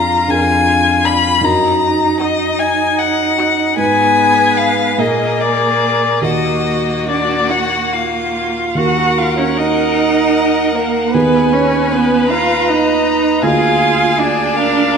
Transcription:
0.00 0.25 F2 soft
0.00 0.19 D4 soft
0.00 0.25 D4 soft
0.00 1.43 F4 soft
0.00 0.19 G#4 soft
0.00 0.25 G#4 soft
0.00 0.25 A#4 soft
0.00 0.31 A#5 soft
0.28 1.39 F2 soft
0.28 1.39 D4 soft
0.28 1.39 G#4 soft
0.28 1.39 A#4 soft
0.28 1.07 G#5 medium
1.04 1.34 D4 soft
1.04 1.33 G#4 soft
1.04 1.46 B5 medium
1.41 3.74 F#2 soft
1.41 3.75 D#4 soft
1.41 3.79 D#4 medium
1.41 3.75 F#4 soft
1.41 3.75 A#4 soft
1.41 2.20 A#5 medium
2.20 2.51 D#4 soft
2.20 2.50 F#4 soft
2.20 2.60 D#5 medium
2.59 3.01 G#5 medium
2.99 3.78 F#5 soft
3.39 3.70 D#4 soft
3.39 3.69 F#4 soft
3.77 4.95 G#2 soft
3.77 5.02 B3 soft
3.77 4.95 D#4 soft
3.77 4.95 G#4 soft
3.77 4.95 B4 soft
3.77 5.00 B4 medium
3.77 4.59 G#5 medium
4.57 5.00 F5 soft
4.97 6.19 A#2 soft
4.97 6.19 A#3 soft
4.97 6.23 A#3 soft
4.97 6.20 G#4 soft
4.97 6.25 G#4 soft
4.97 6.26 A#4 soft
4.97 6.20 A#4 soft
4.97 5.42 D#5 soft
5.40 6.23 D5 soft
6.21 8.72 D#2 soft
6.21 8.72 A#3 soft
6.21 8.53 A#3 soft
6.21 8.73 F#4 soft
6.21 8.56 F#4 soft
6.21 7.08 F#4 soft
6.21 8.73 A#4 soft
6.21 7.07 D#5 soft
7.09 7.52 D4 soft
7.09 7.53 D5 soft
7.50 7.94 F#4 soft
7.50 7.95 F#5 soft
7.92 8.78 F4 soft
7.92 8.75 F5 soft
8.75 11.09 D#2 soft
8.75 11.09 A#3 soft
8.75 11.10 F#4 soft
8.75 9.19 F#4 medium
8.75 11.10 A#4 soft
8.75 11.11 A#4 medium
8.75 9.19 F#5 soft
8.75 11.16 F#5 soft
9.18 9.40 F4 medium
9.18 9.37 F5 soft
9.38 9.58 C#4 soft
9.38 9.59 C#5 soft
9.56 10.74 D#4 medium
9.56 10.77 D#5 soft
10.75 11.14 A#3 soft
10.75 11.13 A#4 soft
11.12 13.39 D#2 soft
11.12 11.54 B3 medium
11.12 13.39 B3 soft
11.12 13.40 D#4 soft
11.12 13.40 G#4 soft
11.12 11.55 B4 soft
11.12 13.45 B4 medium
11.12 12.30 G#5 soft
11.52 11.94 C#4 medium
11.52 11.93 C#5 soft
11.92 12.32 B3 medium
11.92 12.32 B4 soft
12.30 12.71 F4 medium
12.30 12.69 F5 soft
12.30 13.44 A#5 soft
12.68 13.42 D#4 medium
12.68 13.43 D#5 soft
13.42 14.97 D2 soft
13.42 14.97 A#3 soft
13.42 14.21 F4 medium
13.42 14.97 F4 soft
13.42 14.57 G#4 soft
13.42 14.97 G#4 soft
13.42 14.20 F5 soft
13.42 14.59 G#5 soft
14.19 14.97 D4 medium
14.19 14.97 D5 medium
14.57 14.97 A#4 soft
14.57 14.97 F5 soft

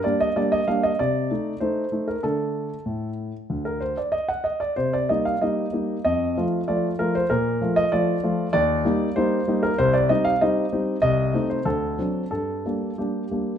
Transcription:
0.04 0.27 G3 soft
0.04 0.27 A#3 soft
0.04 0.28 D4 soft
0.04 0.20 D5 medium
0.20 0.36 D#5 medium
0.36 0.59 G3 soft
0.36 0.59 A#3 soft
0.36 0.59 D4 soft
0.36 0.52 D5 medium
0.52 0.67 D#5 medium
0.68 0.90 G3 soft
0.68 0.90 A#3 soft
0.68 0.91 D4 soft
0.68 0.83 F5 medium
0.83 0.99 D#5 medium
0.99 1.29 C3 medium
0.99 1.57 D5 medium
1.31 1.52 A3 soft
1.31 1.53 D#4 soft
1.60 1.83 A3 soft
1.60 1.84 D#4 soft
1.60 2.07 C5 medium
1.92 2.14 A3 soft
1.92 2.15 D#4 soft
2.08 2.23 A#4 medium
2.23 2.68 D3 soft
2.23 2.74 A3 soft
2.23 2.74 D4 soft
2.23 3.09 A4 medium
2.86 3.30 A2 soft
3.50 3.94 D2 soft
3.65 3.81 A#4 medium
3.80 3.97 C5 medium
3.97 4.13 D5 medium
4.12 4.29 D#5 medium
4.29 4.45 F#5 medium
4.44 4.61 D#5 medium
4.60 4.77 D5 medium
4.76 5.08 C3 soft
4.76 4.93 C5 medium
4.93 5.10 D5 medium
5.09 5.33 G3 soft
5.09 5.33 A#3 soft
5.09 5.33 D#4 soft
5.09 5.25 D#5 medium
5.25 5.42 F5 medium
5.41 5.65 G3 soft
5.41 5.65 A#3 soft
5.41 5.65 D#4 soft
5.41 6.03 D#5 medium
5.73 5.96 G3 soft
5.73 5.96 A#3 soft
5.73 5.96 D#4 soft
6.05 6.36 F2 medium
6.05 6.42 D#5 medium
6.37 6.60 F3 soft
6.37 6.60 A3 soft
6.37 6.60 F4 soft
6.68 6.91 F3 soft
6.68 6.91 A3 soft
6.68 6.91 F4 soft
6.68 6.87 D5 medium
6.99 7.22 F3 soft
6.99 7.22 A3 soft
6.99 7.22 F4 soft
6.99 7.15 A#4 medium
7.15 7.30 C5 medium
7.30 7.60 A#2 medium
7.30 7.77 A#4 medium
7.61 7.84 F3 soft
7.61 7.84 A3 soft
7.61 7.84 F4 soft
7.76 7.92 D#5 medium
7.92 8.15 F3 soft
7.92 8.15 A3 soft
7.92 8.15 F4 medium
7.92 8.51 D5 medium
8.23 8.46 F3 soft
8.23 8.46 A3 soft
8.23 8.46 F4 medium
8.53 8.84 D#2 medium
8.53 9.16 D5 medium
8.85 9.07 G3 medium
8.85 9.08 A#3 medium
8.85 9.08 D#4 medium
9.16 9.39 G3 medium
9.16 9.39 A#3 soft
9.16 9.39 D#4 medium
9.16 9.63 C5 medium
9.48 9.70 G3 soft
9.48 9.70 A#3 soft
9.48 9.70 D#4 medium
9.63 9.79 A#4 medium
9.78 10.09 C2 medium
9.78 9.94 C5 medium
9.93 10.09 D5 medium
10.09 10.32 G3 soft
10.09 10.32 C4 soft
10.09 10.33 D#4 medium
10.09 10.25 D#5 medium
10.25 10.41 F5 medium
10.41 10.64 G3 medium
10.41 10.64 C4 medium
10.41 10.64 D#4 medium
10.41 11.00 D#5 medium
10.73 10.95 G3 soft
10.73 10.95 C4 soft
10.73 10.96 D#4 medium
11.02 11.34 C2 medium
11.02 11.46 D#5 medium
11.34 11.57 A3 soft
11.34 11.58 C4 soft
11.34 11.58 D#4 soft
11.50 11.67 C5 medium
11.65 11.98 D2 medium
11.65 12.29 A4 medium
11.98 12.23 F#3 soft
11.98 12.23 C4 soft
11.98 12.23 D4 soft
12.31 12.64 G2 soft
12.31 12.98 A4 medium
12.65 12.89 G3 soft
12.65 12.90 A#3 soft
12.65 12.90 D4 soft
12.98 13.22 G3 soft
12.98 13.23 A#3 soft
12.98 13.23 D4 soft
12.98 13.58 G4 soft
13.31 13.55 G3 soft
13.31 13.55 A#3 soft
13.31 13.56 D4 soft

